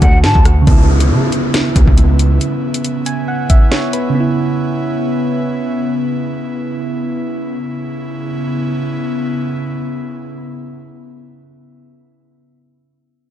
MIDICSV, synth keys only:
0, 0, Header, 1, 2, 480
1, 0, Start_track
1, 0, Tempo, 434783
1, 741, Time_signature, 4, 2, 24, 8
1, 14686, End_track
2, 0, Start_track
2, 0, Title_t, "Synth keys"
2, 0, Program_c, 0, 88
2, 0, Control_c, 0, 64, 127
2, 0, Note_on_c, 0, 50, 58
2, 22, Note_on_c, 0, 57, 54
2, 51, Note_on_c, 0, 66, 64
2, 683, Note_on_c, 0, 49, 86
2, 727, Note_off_c, 0, 50, 0
2, 741, Note_on_c, 0, 59, 73
2, 742, Note_off_c, 0, 57, 0
2, 755, Control_c, 0, 64, 0
2, 756, Note_off_c, 0, 66, 0
2, 799, Note_on_c, 0, 64, 89
2, 958, Control_c, 0, 64, 127
2, 3380, Note_on_c, 0, 80, 68
2, 3604, Note_off_c, 0, 80, 0
2, 3621, Note_on_c, 0, 78, 72
2, 3844, Note_off_c, 0, 78, 0
2, 3860, Note_on_c, 0, 76, 74
2, 4084, Note_off_c, 0, 76, 0
2, 4100, Note_on_c, 0, 73, 78
2, 4324, Note_off_c, 0, 73, 0
2, 4341, Note_on_c, 0, 71, 70
2, 4508, Note_off_c, 0, 49, 0
2, 4523, Note_on_c, 0, 49, 85
2, 4537, Note_off_c, 0, 59, 0
2, 4564, Note_off_c, 0, 71, 0
2, 4566, Note_off_c, 0, 64, 0
2, 4582, Note_on_c, 0, 59, 79
2, 4640, Note_on_c, 0, 64, 91
2, 6518, Control_c, 0, 64, 0
2, 8348, Note_off_c, 0, 49, 0
2, 8377, Note_off_c, 0, 59, 0
2, 8406, Note_off_c, 0, 64, 0
2, 14686, End_track
0, 0, End_of_file